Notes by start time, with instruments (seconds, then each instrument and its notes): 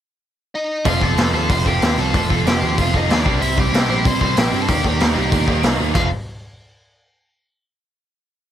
0.55 lead electric guitar D#4 D#5
0.85 picked electric bass F1, overdriven electric guitar F2 C3 F3 A3 C4 F4, lead electric guitar F4 F5, kick, open hi-hat
1.01 picked electric bass F1, overdriven electric guitar F2 C3 F3 A3 C4 F4, lead electric guitar A4 A5, kick
1.17 picked electric bass F1, overdriven electric guitar F2 C3 F3 A3 C4 F4, snare, open hi-hat
1.33 picked electric bass D#2, overdriven electric guitar F2 C3 F3 A3 C4 F4, lead electric guitar A4 A5
1.49 picked electric bass F1, overdriven electric guitar F2 C3 F3 A3 C4 F4, lead electric guitar C5 C6, kick, open hi-hat
1.66 overdriven electric guitar F2 C3 F3 A3 C4 F4, lead electric guitar G4 G5, kick
1.81 picked electric bass D#2, overdriven electric guitar F2 C3 F3 A3 C4 F4, snare, open hi-hat
1.98 picked electric bass C2, overdriven electric guitar F2 C3 F3 A3 C4 F4, lead electric guitar A4 A5
2.13 picked electric bass F1, overdriven electric guitar F2 C3 F3 A3 C4 F4, lead electric guitar A4 A5, kick, open hi-hat
2.30 picked electric bass F1, overdriven electric guitar F2 C3 F3 A3 C4 F4, kick
2.46 picked electric bass F1, overdriven electric guitar F2 C3 F3 A3 C4 F4, lead electric guitar G4 G5, snare, open hi-hat
2.62 picked electric bass D#2, overdriven electric guitar F2 C3 F3 A3 C4 F4
2.77 picked electric bass F1, overdriven electric guitar F2 C3 F3 A3 C4 F4, lead electric guitar F4 F5, kick, open hi-hat
2.93 overdriven electric guitar F2 C3 F3 A3 C4 F4, lead electric guitar D#4 D#5, kick
3.09 picked electric bass D#2, overdriven electric guitar F2 C3 F3 A3 C4 F4, lead electric guitar D4 D5, snare, open hi-hat
3.25 picked electric bass C2, overdriven electric guitar C3 G3 C4 E4, kick
3.41 picked electric bass C2, overdriven electric guitar C3 G3 C4 E4, lead electric guitar E4 E5, open hi-hat
3.57 picked electric bass C2, overdriven electric guitar C3 G3 C4 E4, lead electric guitar G4 G5, kick
3.72 picked electric bass C2, overdriven electric guitar C3 G3 C4 E4, snare, open hi-hat
3.89 picked electric bass A#1, overdriven electric guitar C3 G3 C4 E4, lead electric guitar G4 G5
4.04 picked electric bass C2, overdriven electric guitar C3 G3 C4 E4, lead electric guitar C5 C6, kick, open hi-hat
4.21 overdriven electric guitar C3 G3 C4 E4, lead electric guitar C5 C6, kick
4.36 picked electric bass A#1, overdriven electric guitar C3 G3 C4 E4, lead electric guitar G4 G5, snare, open hi-hat
4.53 picked electric bass G2, overdriven electric guitar C3 G3 C4 E4
4.61 lead electric guitar A4 A5
4.68 picked electric bass D#2, overdriven electric guitar D#3 G3 A#3 D#4, lead electric guitar G4 G5, kick, open hi-hat
4.84 picked electric bass D#2, overdriven electric guitar D#3 G3 A#3 D#4, kick
5.00 picked electric bass D#2, overdriven electric guitar D#3 G3 A#3 D#4, snare, open hi-hat
5.15 picked electric bass C2, overdriven electric guitar D#3 G3 A#3 D#4
5.31 picked electric bass D#2, overdriven electric guitar D#3 G3 A#3 D#4, kick, open hi-hat
5.46 overdriven electric guitar D#3 G3 A#3 D#4, kick
5.63 picked electric bass C2, overdriven electric guitar D#3 G3 A#3 D#4, snare, open hi-hat
5.79 picked electric bass D#2, overdriven electric guitar D#3 G3 A#3 D#4
5.94 picked electric bass F1, overdriven electric guitar F2 C3 F3 A3 C4, lead electric guitar F5, kick, crash